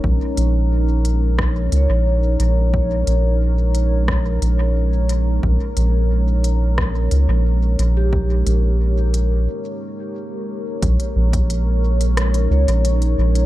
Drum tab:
HH |--x---x---x---x-|--x---x---x---x-|--x---x---x---x-|--x---x---------|
SD |--------r-------|--------r-------|--------r-------|----------------|
BD |o-------o-------|o-------o-------|o-------o-------|o---------------|

HH |xx-xx--xxx-xxx-x|
SD |--------r-------|
BD |o--o------------|